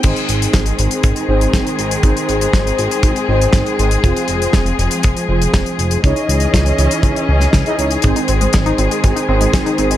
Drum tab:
CC |x---------------|----------------|----------------|----------------|
HH |xxxxxxxxxx-xxxxx|xxxxxxxxxx-xxxxx|xxxxxxxxxx-xxxxx|xxxxxxxxxx-xxxxx|
SD |----o-------o---|----o-------o---|----o-------o---|----o------oo---|
BD |o---o---o---o---|o---o---o---o---|o---o---o---o---|o---o---o---o---|

CC |----------------|
HH |xxxxxxxxxx-xxxxx|
SD |----o-------o---|
BD |o---o---o---o---|